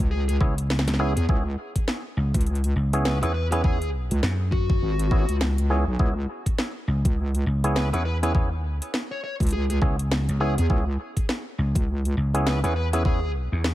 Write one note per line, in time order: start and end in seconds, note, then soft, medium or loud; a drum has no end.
0.00 0.39 C#2 loud
0.11 0.22 G#4 medium
0.28 0.36 G#4 medium
0.28 closed hi-hat medium
0.41 0.85 C#2 loud
0.41 0.55 B3 medium
0.41 0.55 C#4 medium
0.41 0.55 E4 medium
0.41 0.55 G#4 loud
0.41 kick loud
0.58 closed hi-hat medium
0.70 snare loud
0.79 snare loud
0.87 1.14 C#2 medium
0.87 snare medium
0.87 closed hi-hat medium
0.94 snare medium
0.99 1.14 B3 medium
0.99 1.14 C#4 medium
0.99 1.14 E4 medium
0.99 1.10 G#4 medium
0.99 1.14 G#4 loud
1.16 1.27 E2 loud
1.16 1.24 G#4 medium
1.16 closed hi-hat medium
1.29 1.56 C#2 medium
1.29 1.43 B3 medium
1.29 1.43 C#4 medium
1.29 1.43 E4 medium
1.29 1.43 G#4 medium
1.29 kick loud
1.76 kick medium
1.76 closed hi-hat medium
1.88 cross-stick soft
1.88 snare loud
2.17 2.32 C#2 loud
2.34 2.74 C#2 loud
2.34 kick loud
2.34 closed hi-hat medium
2.41 closed hi-hat medium
2.47 closed hi-hat soft
2.55 closed hi-hat soft
2.64 closed hi-hat medium
2.76 3.20 C#2 medium
2.93 3.19 B3 medium
2.93 3.19 C#4 medium
2.93 3.19 E4 medium
2.93 3.18 G#4 loud
2.93 closed hi-hat medium
3.05 3.16 B4 medium
3.05 snare loud
3.22 4.08 E2 loud
3.22 3.32 B3 medium
3.22 3.32 C#4 medium
3.22 3.32 E4 medium
3.22 3.32 G#4 medium
3.22 3.30 B4 medium
3.22 closed hi-hat medium
3.34 3.46 B4 medium
3.52 3.62 B3 medium
3.52 3.62 C#4 medium
3.52 3.62 E4 medium
3.52 3.62 G#4 loud
3.52 3.60 B4 medium
3.52 closed hi-hat medium
3.64 3.78 B3 medium
3.64 3.78 C#4 medium
3.64 3.78 E4 medium
3.64 3.88 G#4 loud
3.64 3.78 G#4 medium
3.64 kick loud
3.82 closed hi-hat soft
4.11 4.21 C#2 loud
4.11 closed hi-hat medium
4.23 4.80 F#2 loud
4.23 cross-stick soft
4.23 snare loud
4.52 5.36 F#4 medium
4.52 kick medium
4.70 kick loud
4.82 5.26 G#1 medium
4.99 closed hi-hat medium
5.11 5.25 B3 medium
5.11 5.25 C#4 medium
5.11 5.25 E4 medium
5.11 5.25 G#4 medium
5.11 kick loud
5.29 5.85 C#2 loud
5.29 closed hi-hat medium
5.41 snare loud
5.58 closed hi-hat soft
5.70 5.84 B3 medium
5.70 5.84 C#4 medium
5.70 5.84 E4 medium
5.70 5.84 G#4 loud
5.87 5.97 B1 loud
5.99 6.27 C#2 loud
5.99 6.14 B3 medium
5.99 6.14 C#4 medium
5.99 6.14 E4 medium
5.99 6.14 G#4 medium
5.99 kick loud
6.46 kick medium
6.46 closed hi-hat medium
6.58 cross-stick soft
6.58 snare loud
6.88 7.02 C#2 loud
7.05 7.44 C#2 loud
7.05 kick loud
7.05 closed hi-hat medium
7.35 closed hi-hat medium
7.46 7.90 C#2 loud
7.64 7.89 B3 medium
7.64 7.89 C#4 medium
7.64 7.89 E4 medium
7.64 7.89 G#4 loud
7.64 closed hi-hat medium
7.76 7.87 B4 medium
7.76 snare loud
7.93 8.53 E2 loud
7.93 8.03 B3 medium
7.93 8.03 C#4 medium
7.93 8.03 E4 medium
7.93 8.03 G#4 medium
7.93 8.01 B4 medium
7.93 closed hi-hat soft
8.05 8.16 B4 medium
8.23 8.32 B3 medium
8.23 8.33 C#4 medium
8.23 8.33 E4 medium
8.23 8.33 G#4 loud
8.23 8.31 B4 medium
8.23 closed hi-hat medium
8.35 8.49 B3 medium
8.35 8.49 C#4 medium
8.35 8.49 E4 medium
8.35 8.49 G#4 medium
8.35 kick loud
8.53 8.79 D#2 loud
8.82 closed hi-hat medium
8.94 snare loud
9.11 9.19 C#5 loud
9.24 9.34 C#5 medium
9.40 9.80 C#2 loud
9.40 kick loud
9.40 closed hi-hat soft
9.43 closed hi-hat soft
9.47 closed hi-hat soft
9.49 closed hi-hat soft
9.51 9.64 G#4 medium
9.51 closed hi-hat medium
9.70 9.78 G#4 medium
9.70 closed hi-hat medium
9.82 10.26 C#2 loud
9.82 9.96 B3 medium
9.82 9.96 C#4 medium
9.82 9.96 E4 medium
9.82 9.96 G#4 loud
9.82 kick loud
9.99 closed hi-hat medium
10.12 snare loud
10.29 10.55 C#2 medium
10.29 closed hi-hat soft
10.40 10.55 B3 medium
10.40 10.55 C#4 medium
10.40 10.55 E4 medium
10.40 10.52 G#4 medium
10.40 10.55 G#4 medium
10.58 10.68 E2 medium
10.58 10.66 G#4 medium
10.58 closed hi-hat medium
10.70 10.97 C#2 loud
10.70 10.84 B3 medium
10.70 10.84 C#4 medium
10.70 10.84 E4 medium
10.70 10.84 G#4 medium
10.70 kick loud
11.17 kick medium
11.17 closed hi-hat medium
11.29 cross-stick soft
11.29 snare loud
11.58 11.73 C#2 loud
11.75 12.15 C#2 loud
11.75 kick loud
11.75 closed hi-hat medium
12.05 closed hi-hat medium
12.17 12.61 C#2 loud
12.34 12.60 B3 medium
12.34 12.60 C#4 medium
12.34 12.60 E4 medium
12.34 12.60 G#4 medium
12.34 closed hi-hat medium
12.46 12.58 B4 medium
12.46 snare loud
12.64 13.49 E2 loud
12.64 12.74 B3 medium
12.64 12.74 C#4 medium
12.64 12.74 E4 medium
12.64 12.74 G#4 medium
12.64 12.72 B4 medium
12.64 closed hi-hat medium
12.76 12.87 B4 medium
12.93 13.03 B3 loud
12.93 13.03 C#4 medium
12.93 13.03 E4 medium
12.93 13.03 G#4 loud
12.93 13.01 B4 medium
12.93 closed hi-hat medium
13.05 13.19 B3 medium
13.05 13.19 C#4 medium
13.05 13.19 E4 medium
13.05 13.30 G#4 loud
13.05 kick loud
13.52 13.74 E2 medium
13.64 cross-stick soft
13.64 snare loud